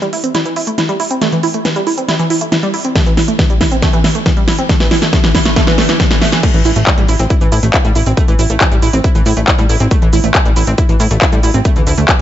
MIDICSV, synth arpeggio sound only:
0, 0, Header, 1, 2, 480
1, 0, Start_track
1, 0, Key_signature, 0, "minor"
1, 0, Tempo, 434783
1, 1342, Time_signature, 4, 2, 24, 8
1, 13484, End_track
2, 0, Start_track
2, 0, Title_t, "Synth arpeggio sound"
2, 0, Program_c, 0, 84
2, 22, Note_on_c, 0, 55, 96
2, 68, Note_off_c, 0, 55, 0
2, 142, Note_on_c, 0, 64, 97
2, 211, Note_off_c, 0, 64, 0
2, 262, Note_on_c, 0, 60, 74
2, 308, Note_off_c, 0, 60, 0
2, 382, Note_on_c, 0, 64, 105
2, 428, Note_off_c, 0, 64, 0
2, 503, Note_on_c, 0, 52, 96
2, 571, Note_off_c, 0, 52, 0
2, 623, Note_on_c, 0, 64, 99
2, 668, Note_off_c, 0, 64, 0
2, 742, Note_on_c, 0, 57, 77
2, 770, Note_off_c, 0, 57, 0
2, 862, Note_on_c, 0, 64, 81
2, 908, Note_off_c, 0, 64, 0
2, 982, Note_on_c, 0, 55, 98
2, 1028, Note_off_c, 0, 55, 0
2, 1102, Note_on_c, 0, 64, 99
2, 1171, Note_off_c, 0, 64, 0
2, 1222, Note_on_c, 0, 60, 75
2, 1268, Note_off_c, 0, 60, 0
2, 1342, Note_on_c, 0, 57, 105
2, 1388, Note_off_c, 0, 57, 0
2, 1462, Note_on_c, 0, 52, 100
2, 1531, Note_off_c, 0, 52, 0
2, 1582, Note_on_c, 0, 64, 101
2, 1628, Note_off_c, 0, 64, 0
2, 1702, Note_on_c, 0, 57, 77
2, 1730, Note_off_c, 0, 57, 0
2, 1822, Note_on_c, 0, 52, 82
2, 1868, Note_off_c, 0, 52, 0
2, 1942, Note_on_c, 0, 55, 97
2, 1988, Note_off_c, 0, 55, 0
2, 2062, Note_on_c, 0, 64, 99
2, 2131, Note_off_c, 0, 64, 0
2, 2182, Note_on_c, 0, 60, 76
2, 2228, Note_off_c, 0, 60, 0
2, 2303, Note_on_c, 0, 64, 102
2, 2348, Note_off_c, 0, 64, 0
2, 2423, Note_on_c, 0, 52, 100
2, 2491, Note_off_c, 0, 52, 0
2, 2543, Note_on_c, 0, 64, 104
2, 2588, Note_off_c, 0, 64, 0
2, 2663, Note_on_c, 0, 57, 73
2, 2690, Note_off_c, 0, 57, 0
2, 2783, Note_on_c, 0, 64, 82
2, 2828, Note_off_c, 0, 64, 0
2, 2903, Note_on_c, 0, 55, 100
2, 2948, Note_off_c, 0, 55, 0
2, 3023, Note_on_c, 0, 64, 99
2, 3091, Note_off_c, 0, 64, 0
2, 3143, Note_on_c, 0, 60, 75
2, 3188, Note_off_c, 0, 60, 0
2, 3263, Note_on_c, 0, 57, 94
2, 3308, Note_off_c, 0, 57, 0
2, 3383, Note_on_c, 0, 52, 92
2, 3451, Note_off_c, 0, 52, 0
2, 3503, Note_on_c, 0, 64, 95
2, 3548, Note_off_c, 0, 64, 0
2, 3623, Note_on_c, 0, 57, 71
2, 3650, Note_off_c, 0, 57, 0
2, 3743, Note_on_c, 0, 52, 76
2, 3788, Note_off_c, 0, 52, 0
2, 3863, Note_on_c, 0, 55, 91
2, 3908, Note_off_c, 0, 55, 0
2, 3982, Note_on_c, 0, 64, 92
2, 4051, Note_off_c, 0, 64, 0
2, 4103, Note_on_c, 0, 60, 69
2, 4148, Note_off_c, 0, 60, 0
2, 4222, Note_on_c, 0, 57, 98
2, 4268, Note_off_c, 0, 57, 0
2, 4342, Note_on_c, 0, 52, 95
2, 4411, Note_off_c, 0, 52, 0
2, 4462, Note_on_c, 0, 64, 96
2, 4508, Note_off_c, 0, 64, 0
2, 4582, Note_on_c, 0, 57, 73
2, 4610, Note_off_c, 0, 57, 0
2, 4702, Note_on_c, 0, 52, 81
2, 4748, Note_off_c, 0, 52, 0
2, 4822, Note_on_c, 0, 55, 95
2, 4868, Note_off_c, 0, 55, 0
2, 4942, Note_on_c, 0, 64, 99
2, 5011, Note_off_c, 0, 64, 0
2, 5063, Note_on_c, 0, 60, 70
2, 5108, Note_off_c, 0, 60, 0
2, 5182, Note_on_c, 0, 57, 104
2, 5228, Note_off_c, 0, 57, 0
2, 5302, Note_on_c, 0, 52, 102
2, 5371, Note_off_c, 0, 52, 0
2, 5423, Note_on_c, 0, 64, 102
2, 5468, Note_off_c, 0, 64, 0
2, 5543, Note_on_c, 0, 57, 76
2, 5570, Note_off_c, 0, 57, 0
2, 5662, Note_on_c, 0, 57, 101
2, 5708, Note_off_c, 0, 57, 0
2, 5783, Note_on_c, 0, 52, 100
2, 5851, Note_off_c, 0, 52, 0
2, 5903, Note_on_c, 0, 64, 101
2, 5948, Note_off_c, 0, 64, 0
2, 6023, Note_on_c, 0, 57, 76
2, 6050, Note_off_c, 0, 57, 0
2, 6143, Note_on_c, 0, 57, 106
2, 6188, Note_off_c, 0, 57, 0
2, 6263, Note_on_c, 0, 52, 101
2, 6331, Note_off_c, 0, 52, 0
2, 6383, Note_on_c, 0, 57, 103
2, 6428, Note_off_c, 0, 57, 0
2, 6503, Note_on_c, 0, 52, 106
2, 6571, Note_off_c, 0, 52, 0
2, 6623, Note_on_c, 0, 57, 105
2, 6668, Note_off_c, 0, 57, 0
2, 6743, Note_on_c, 0, 52, 102
2, 6811, Note_off_c, 0, 52, 0
2, 6863, Note_on_c, 0, 57, 105
2, 6908, Note_off_c, 0, 57, 0
2, 6983, Note_on_c, 0, 52, 106
2, 7051, Note_off_c, 0, 52, 0
2, 7103, Note_on_c, 0, 57, 106
2, 7149, Note_off_c, 0, 57, 0
2, 7223, Note_on_c, 0, 52, 99
2, 7291, Note_off_c, 0, 52, 0
2, 7343, Note_on_c, 0, 64, 103
2, 7389, Note_off_c, 0, 64, 0
2, 7463, Note_on_c, 0, 57, 77
2, 7490, Note_off_c, 0, 57, 0
2, 7583, Note_on_c, 0, 52, 81
2, 7628, Note_off_c, 0, 52, 0
2, 7703, Note_on_c, 0, 55, 98
2, 7748, Note_off_c, 0, 55, 0
2, 7823, Note_on_c, 0, 64, 99
2, 7891, Note_off_c, 0, 64, 0
2, 7943, Note_on_c, 0, 60, 78
2, 7988, Note_off_c, 0, 60, 0
2, 8063, Note_on_c, 0, 64, 104
2, 8108, Note_off_c, 0, 64, 0
2, 8183, Note_on_c, 0, 52, 102
2, 8251, Note_off_c, 0, 52, 0
2, 8303, Note_on_c, 0, 64, 101
2, 8348, Note_off_c, 0, 64, 0
2, 8423, Note_on_c, 0, 57, 80
2, 8450, Note_off_c, 0, 57, 0
2, 8543, Note_on_c, 0, 64, 81
2, 8588, Note_off_c, 0, 64, 0
2, 8664, Note_on_c, 0, 55, 101
2, 8709, Note_off_c, 0, 55, 0
2, 8783, Note_on_c, 0, 64, 102
2, 8851, Note_off_c, 0, 64, 0
2, 8904, Note_on_c, 0, 60, 76
2, 8949, Note_off_c, 0, 60, 0
2, 9023, Note_on_c, 0, 57, 107
2, 9069, Note_off_c, 0, 57, 0
2, 9143, Note_on_c, 0, 52, 101
2, 9211, Note_off_c, 0, 52, 0
2, 9263, Note_on_c, 0, 64, 102
2, 9308, Note_off_c, 0, 64, 0
2, 9383, Note_on_c, 0, 57, 77
2, 9410, Note_off_c, 0, 57, 0
2, 9503, Note_on_c, 0, 52, 83
2, 9548, Note_off_c, 0, 52, 0
2, 9623, Note_on_c, 0, 55, 99
2, 9668, Note_off_c, 0, 55, 0
2, 9743, Note_on_c, 0, 64, 103
2, 9811, Note_off_c, 0, 64, 0
2, 9863, Note_on_c, 0, 60, 77
2, 9908, Note_off_c, 0, 60, 0
2, 9983, Note_on_c, 0, 64, 104
2, 10028, Note_off_c, 0, 64, 0
2, 10103, Note_on_c, 0, 52, 99
2, 10171, Note_off_c, 0, 52, 0
2, 10223, Note_on_c, 0, 64, 101
2, 10268, Note_off_c, 0, 64, 0
2, 10343, Note_on_c, 0, 57, 76
2, 10370, Note_off_c, 0, 57, 0
2, 10463, Note_on_c, 0, 64, 83
2, 10508, Note_off_c, 0, 64, 0
2, 10583, Note_on_c, 0, 55, 99
2, 10628, Note_off_c, 0, 55, 0
2, 10703, Note_on_c, 0, 64, 102
2, 10771, Note_off_c, 0, 64, 0
2, 10823, Note_on_c, 0, 60, 77
2, 10868, Note_off_c, 0, 60, 0
2, 10943, Note_on_c, 0, 57, 106
2, 10988, Note_off_c, 0, 57, 0
2, 11062, Note_on_c, 0, 52, 101
2, 11131, Note_off_c, 0, 52, 0
2, 11183, Note_on_c, 0, 64, 106
2, 11228, Note_off_c, 0, 64, 0
2, 11303, Note_on_c, 0, 57, 78
2, 11330, Note_off_c, 0, 57, 0
2, 11423, Note_on_c, 0, 52, 82
2, 11468, Note_off_c, 0, 52, 0
2, 11543, Note_on_c, 0, 55, 97
2, 11588, Note_off_c, 0, 55, 0
2, 11663, Note_on_c, 0, 64, 97
2, 11731, Note_off_c, 0, 64, 0
2, 11783, Note_on_c, 0, 60, 78
2, 11828, Note_off_c, 0, 60, 0
2, 11903, Note_on_c, 0, 64, 102
2, 11948, Note_off_c, 0, 64, 0
2, 12023, Note_on_c, 0, 52, 103
2, 12091, Note_off_c, 0, 52, 0
2, 12143, Note_on_c, 0, 64, 103
2, 12188, Note_off_c, 0, 64, 0
2, 12263, Note_on_c, 0, 57, 77
2, 12290, Note_off_c, 0, 57, 0
2, 12383, Note_on_c, 0, 64, 81
2, 12428, Note_off_c, 0, 64, 0
2, 12503, Note_on_c, 0, 55, 101
2, 12548, Note_off_c, 0, 55, 0
2, 12623, Note_on_c, 0, 64, 106
2, 12691, Note_off_c, 0, 64, 0
2, 12743, Note_on_c, 0, 60, 77
2, 12788, Note_off_c, 0, 60, 0
2, 12863, Note_on_c, 0, 57, 107
2, 12908, Note_off_c, 0, 57, 0
2, 12983, Note_on_c, 0, 52, 105
2, 13051, Note_off_c, 0, 52, 0
2, 13103, Note_on_c, 0, 64, 104
2, 13148, Note_off_c, 0, 64, 0
2, 13223, Note_on_c, 0, 57, 76
2, 13250, Note_off_c, 0, 57, 0
2, 13343, Note_on_c, 0, 52, 84
2, 13388, Note_off_c, 0, 52, 0
2, 13484, End_track
0, 0, End_of_file